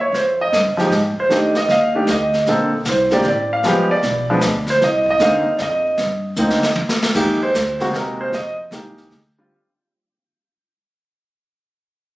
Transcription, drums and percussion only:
0.14 brush sweep soft
0.14 snare soft
0.53 snare medium
0.53 hi-hat pedal medium
0.79 snare soft
0.91 snare soft
1.30 brush sweep soft
1.30 snare soft
1.55 snare medium
1.69 snare soft
2.07 snare medium
2.07 hi-hat pedal soft
2.34 snare soft
2.46 brush sweep soft
2.46 snare soft
2.85 snare medium
2.85 hi-hat pedal medium
3.11 snare soft
3.23 snare soft
3.63 brush sweep soft
3.63 snare soft
4.03 snare soft
4.41 snare medium
4.41 hi-hat pedal medium
4.67 snare soft
4.81 brush sweep soft
4.81 snare soft
5.06 kick soft
5.19 snare medium
5.19 hi-hat pedal medium
5.58 snare soft
5.98 brush sweep soft
5.98 snare soft
6.36 hi-hat pedal medium
6.50 snare soft
6.63 snare medium
6.75 high tom medium
6.89 snare medium
7.02 snare medium
7.15 brush sweep soft
7.15 kick medium
7.15 snare soft
7.15 crash medium
7.55 snare medium
7.55 hi-hat pedal medium
7.80 snare soft
7.94 snare soft
8.33 brush sweep soft
8.33 snare soft
8.72 snare medium
8.72 hi-hat pedal medium
8.97 snare soft
9.11 snare soft

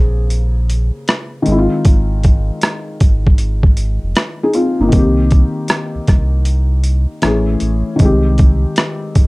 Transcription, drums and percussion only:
0.30 closed hi-hat medium
0.70 closed hi-hat medium
1.08 cross-stick loud
1.08 closed hi-hat medium
1.46 closed hi-hat medium
1.85 kick loud
1.85 closed hi-hat medium
2.23 kick loud
2.23 closed hi-hat medium
2.61 cross-stick loud
2.61 closed hi-hat medium
3.00 kick loud
3.00 closed hi-hat medium
3.27 kick medium
3.38 closed hi-hat medium
3.63 kick medium
3.77 closed hi-hat medium
4.16 cross-stick loud
4.16 closed hi-hat medium
4.54 closed hi-hat medium
4.92 kick loud
4.92 closed hi-hat medium
5.31 kick loud
5.31 closed hi-hat medium
5.68 cross-stick loud
5.68 closed hi-hat medium
6.08 kick loud
6.08 cross-stick soft
6.08 closed hi-hat medium
6.45 closed hi-hat medium
6.84 closed hi-hat medium
7.22 cross-stick loud
7.22 closed hi-hat medium
7.60 closed hi-hat medium
7.99 kick loud
7.99 closed hi-hat medium
8.38 kick loud
8.38 closed hi-hat medium
8.76 cross-stick loud
8.76 closed hi-hat medium
9.15 kick loud
9.15 closed hi-hat medium

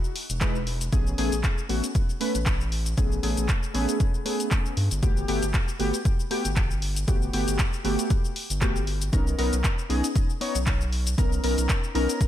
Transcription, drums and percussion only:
0.04 cabasa soft
0.16 open hi-hat loud
0.30 closed hi-hat medium
0.30 cabasa medium
0.41 kick loud
0.41 clap loud
0.41 closed hi-hat medium
0.41 cabasa medium
0.56 cabasa soft
0.67 open hi-hat loud
0.81 closed hi-hat medium
0.81 cabasa medium
0.93 kick loud
0.93 closed hi-hat soft
0.93 cabasa medium
1.07 cabasa soft
1.18 open hi-hat loud
1.32 closed hi-hat medium
1.32 cabasa medium
1.43 kick loud
1.43 clap loud
1.43 closed hi-hat medium
1.43 cabasa medium
1.58 cabasa soft
1.69 open hi-hat loud
1.84 closed hi-hat medium
1.84 cabasa medium
1.95 kick loud
1.95 closed hi-hat soft
1.95 cabasa medium
2.09 cabasa soft
2.21 open hi-hat loud
2.35 closed hi-hat medium
2.35 cabasa medium
2.46 kick loud
2.46 clap loud
2.46 closed hi-hat soft
2.46 cabasa medium
2.61 cabasa soft
2.72 open hi-hat loud
2.86 closed hi-hat medium
2.86 cabasa medium
2.98 kick loud
2.98 closed hi-hat soft
2.98 cabasa medium
3.12 cabasa soft
3.23 open hi-hat loud
3.37 closed hi-hat medium
3.37 cabasa medium
3.48 kick loud
3.48 clap loud
3.48 closed hi-hat soft
3.48 cabasa medium
3.63 cabasa soft
3.75 open hi-hat loud
3.89 closed hi-hat medium
3.89 cabasa medium
4.00 kick loud
4.00 closed hi-hat soft
4.00 cabasa medium
4.14 cabasa soft
4.26 open hi-hat loud
4.40 closed hi-hat medium
4.40 cabasa medium
4.51 kick loud
4.51 clap loud
4.51 closed hi-hat soft
4.51 cabasa medium
4.66 cabasa soft
4.77 open hi-hat loud
4.91 closed hi-hat medium
4.91 cabasa medium
5.03 kick loud
5.03 closed hi-hat soft
5.03 cabasa medium
5.17 cabasa soft
5.28 open hi-hat loud
5.43 closed hi-hat medium
5.43 cabasa medium
5.54 kick loud
5.54 clap loud
5.54 closed hi-hat soft
5.54 cabasa medium
5.68 cabasa soft
5.80 open hi-hat loud
5.94 closed hi-hat medium
5.94 cabasa medium
6.05 kick loud
6.05 closed hi-hat soft
6.05 cabasa medium
6.20 cabasa soft
6.31 open hi-hat loud
6.45 closed hi-hat medium
6.45 cabasa medium
6.56 kick loud
6.56 clap loud
6.56 closed hi-hat soft
6.56 cabasa medium
6.71 cabasa soft
6.82 open hi-hat loud
6.96 closed hi-hat medium
6.96 cabasa medium
7.08 kick loud
7.08 closed hi-hat soft
7.08 cabasa medium
7.22 cabasa soft
7.33 open hi-hat loud
7.48 closed hi-hat medium
7.48 cabasa medium
7.59 kick medium
7.59 clap loud
7.59 closed hi-hat medium
7.59 cabasa medium
7.73 cabasa soft
7.85 open hi-hat loud
7.99 closed hi-hat medium
7.99 cabasa medium
8.10 kick loud
8.10 closed hi-hat soft
8.10 cabasa medium
8.25 cabasa soft
8.36 open hi-hat loud
8.50 closed hi-hat medium
8.50 cabasa medium
8.61 kick loud
8.61 clap loud
8.61 closed hi-hat soft
8.61 cabasa medium
8.76 cabasa soft
8.87 open hi-hat loud
9.02 closed hi-hat medium
9.02 cabasa medium
9.13 kick loud
9.13 closed hi-hat medium
9.13 cabasa medium
9.27 cabasa soft
9.39 open hi-hat loud
9.53 closed hi-hat medium
9.53 cabasa medium
9.64 kick loud
9.64 clap loud
9.64 closed hi-hat medium
9.64 cabasa medium
9.79 cabasa soft
9.90 open hi-hat loud
10.04 closed hi-hat medium
10.04 cabasa medium
10.16 kick loud
10.16 closed hi-hat medium
10.16 cabasa medium
10.30 cabasa soft
10.41 open hi-hat loud
10.55 closed hi-hat medium
10.55 cabasa medium
10.66 kick loud
10.66 clap loud
10.66 closed hi-hat medium
10.66 cabasa medium
10.81 cabasa soft
10.92 open hi-hat medium
11.07 closed hi-hat medium
11.07 cabasa medium
11.18 kick loud
11.18 closed hi-hat medium
11.18 cabasa medium
11.32 cabasa soft
11.44 open hi-hat loud
11.58 closed hi-hat medium
11.58 cabasa medium
11.69 kick medium
11.69 clap loud
11.69 closed hi-hat medium
11.69 cabasa medium
11.84 cabasa soft
11.95 open hi-hat loud
12.09 closed hi-hat medium
12.09 cabasa medium
12.21 kick loud
12.21 closed hi-hat medium
12.21 cabasa medium

